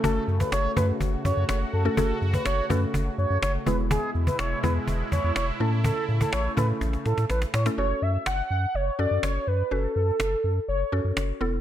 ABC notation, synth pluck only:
X:1
M:4/4
L:1/16
Q:1/4=124
K:F#m
V:1 name="Synth pluck"
[A,CFA]4 z2 [A,CFB]4- [A,CFB] z4 [A,CFA] | [A,CFG]4 z2 [A,CFA]4- [A,CFA] z3 [G,B,EG]2- | [G,B,EG]4 z2 [G,B,EG]4- [G,B,EG] z3 [A,CEA]2- | [A,CEA]4 z2 [A,CEA]4- [A,CEA] z4 [A,CEA] |
[CFA]4- [CFA] z4 z [CFA]4 z2 | [CFB]4- [CFB] z4 z [CFA]4 [B,EA]2 |]